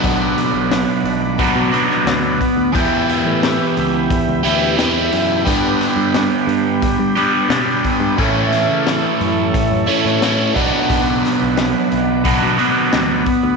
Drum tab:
HH |o-o-o-o-o-o-o-o-|o-o-o-o-o-o-o-o-|o-o-o-o-o-o-o-o-|o-o-o-o-o-o-o-o-|
SD |----o------oo---|----o-------o---|--o-o-------o---|--o-o------oo---|
BD |o-------o-----o-|o-------o-------|o-------o-----o-|o-------o-----o-|

HH |o-o-o-o-o-o-o-o-|
SD |--o-o-------o---|
BD |o-------o-----o-|